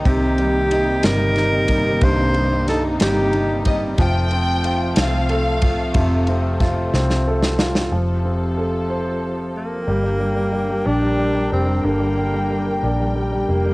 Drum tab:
RD |x-x-x-x-x-x-|x-x-x-x-x-x-|x-x-x-x-x-x-|x-x-x-------|
SD |------o-o---|----o-o-----|------o-----|----o-oo-ooo|
BD |o---------o-|o---------o-|o---------o-|o---o-------|

RD |------------|------------|------------|
SD |------------|------------|------------|
BD |------------|------------|------------|